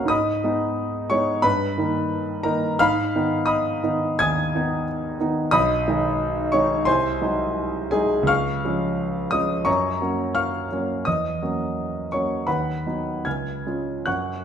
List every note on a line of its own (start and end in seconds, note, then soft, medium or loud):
0.00 0.13 C#2 medium
0.00 0.13 A#3 soft
0.00 0.13 C#4 soft
0.00 0.12 F#4 medium
0.00 0.13 F5 medium
0.00 0.13 F#5 medium
0.00 0.13 C#6 medium
0.00 0.12 F6 medium
0.00 0.13 F#6 loud
0.05 0.40 G#2 medium
0.05 1.09 D#6 medium
0.09 1.06 D#5 medium
0.09 1.06 B5 medium
0.44 1.07 G#3 soft
0.44 1.07 B3 soft
0.44 1.07 D#4 soft
1.10 1.41 G#3 soft
1.10 1.41 B3 soft
1.10 1.41 D#4 soft
1.10 1.42 C#5 medium
1.10 1.44 C#6 medium
1.42 1.76 G2 medium
1.42 2.40 B4 medium
1.42 2.44 B5 loud
1.78 2.41 D#3 soft
1.78 2.41 A#3 soft
1.78 2.42 D#4 medium
2.43 2.77 D#3 soft
2.43 2.77 A#3 soft
2.43 2.77 D#4 medium
2.43 2.78 A#4 medium
2.43 2.80 A#5 medium
2.79 3.13 G#2 medium
2.79 3.43 F5 medium
2.79 3.43 B5 medium
2.79 3.47 F6 loud
3.16 3.79 D#3 soft
3.16 3.79 B3 soft
3.16 3.80 D#4 medium
3.46 4.15 D#5 medium
3.46 4.15 B5 medium
3.46 4.18 D#6 medium
3.84 4.16 D#3 soft
3.84 4.16 B3 soft
3.84 4.16 D#4 soft
4.19 4.53 D#2 medium
4.19 4.83 G#5 medium
4.19 4.83 D#6 medium
4.19 4.86 G#6 loud
4.55 5.17 D#3 soft
4.55 5.17 B3 soft
4.55 5.17 D#4 medium
5.20 5.50 D#3 soft
5.20 5.50 B3 soft
5.20 5.51 D#4 medium
5.51 5.86 B1 medium
5.51 6.48 D#5 medium
5.51 6.48 B5 medium
5.51 6.52 D#6 loud
5.88 6.49 D#3 medium
5.88 6.49 G#3 medium
5.88 6.49 D#4 medium
6.52 6.83 D#3 soft
6.52 6.84 G#3 soft
6.52 6.84 D#4 medium
6.52 6.84 C#5 medium
6.52 6.86 C#6 medium
6.85 7.20 C2 medium
6.85 7.88 C5 medium
6.85 7.88 G#5 medium
6.85 7.91 C6 loud
7.21 7.88 F#3 soft
7.21 7.88 G#3 soft
7.21 7.88 D#4 medium
7.91 8.25 F#3 soft
7.91 8.26 G#3 soft
7.91 8.26 D#4 soft
7.91 8.26 G#4 medium
7.91 8.28 G#5 medium
8.23 8.60 C#2 medium
8.27 9.28 F5 medium
8.27 9.28 C#6 medium
8.27 9.31 F6 loud
8.65 9.29 F3 soft
8.65 9.29 G#3 soft
8.65 9.29 C#4 soft
9.31 9.64 F3 soft
9.31 9.64 G#3 soft
9.31 9.64 C#4 soft
9.31 9.64 D#5 medium
9.31 9.66 D#6 medium
9.65 10.00 F#2 medium
9.65 10.32 C#5 medium
9.65 10.32 A#5 medium
9.65 10.34 C#6 medium
10.01 10.67 F#3 soft
10.01 10.67 A#3 soft
10.01 10.67 C#4 soft
10.35 11.02 F5 medium
10.35 11.02 C#6 medium
10.35 11.05 F6 medium
10.72 11.03 F#3 soft
10.72 11.04 A#3 soft
10.72 11.04 C#4 soft
11.05 11.41 E2 medium
11.05 12.08 D#5 medium
11.05 12.11 D#6 medium
11.42 12.08 F#3 soft
11.42 12.08 A#3 soft
11.42 12.08 C#4 soft
12.12 12.44 F#3 soft
12.12 12.44 A#3 soft
12.12 12.45 C#4 soft
12.12 12.45 C#5 medium
12.12 12.47 C#6 medium
12.47 12.84 D#2 medium
12.47 13.22 B4 medium
12.47 13.22 F#5 medium
12.47 13.25 B5 medium
12.86 13.22 F#3 soft
12.86 13.22 B3 soft
12.86 13.22 D#4 soft
13.25 13.65 C#2 soft
13.25 14.03 G#5 soft
13.25 14.03 F6 soft
13.25 14.06 G#6 medium
13.67 14.03 G#3 soft
13.67 14.03 C#4 soft
13.67 14.03 F4 soft
14.06 14.45 F#2 soft
14.06 14.45 F#5 medium
14.06 14.45 C#6 medium
14.06 14.45 F#6 medium